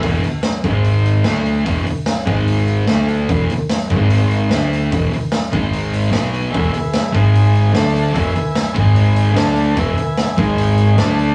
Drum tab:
HH |oooooooo|oooooooo|oooooooo|oooooooo|
SD |--o---o-|--o---o-|--o---o-|--o---o-|
BD |o--o----|o--o----|o--o----|o--o----|

HH |oooooooo|oooooooo|oooooooo|
SD |--o---o-|--o---o-|--o---o-|
BD |o--o----|o--o----|o--o----|